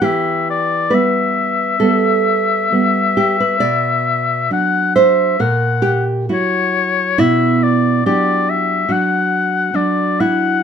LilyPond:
<<
  \new Staff \with { instrumentName = "Oboe" } { \time 4/4 \key e \minor \tempo 4 = 67 e''8 d''8 e''2.~ | e''4 fis''8 e''8 fis''8 r8 cis''4 | e''8 d''8 d''8 e''8 fis''4 d''8 fis''8 | }
  \new Staff \with { instrumentName = "Nylon-string guitar" } { \time 4/4 \key e \minor << { g'4 b'4 a'4. g'16 b'16 | d''4. c''8 ais'8 g'8 fis'4 | e'4 g'4 fis'4. e'8 | } \\ { e4 <g b>4 <g b>4 <g b>4 | b,4 <fis d'>4 ais,4 <fis e'>4 | b,4 <fis d'>4 <fis d'>4 <fis d'>4 | } >> }
>>